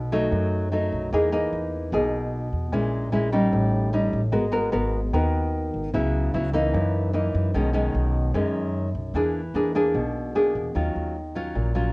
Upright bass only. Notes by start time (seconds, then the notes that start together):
Already playing: B1
0.32 F#2
0.92 B1
1.13 E2
1.53 E2
1.92 B1
2.53 E2
2.73 A#1
3.13 A#1
3.53 A1
4.13 A1
4.33 G#1
4.74 G#1
5.13 D#2
5.74 G#1
5.94 C#2
6.34 C#2
6.74 F#2
7.34 F#2
7.54 B1
7.95 B1
8.34 F#2
8.95 B1
9.14 E2
9.54 E2
9.94 B1
10.55 E2
10.75 D#2
10.95 D#2
11.55 A#1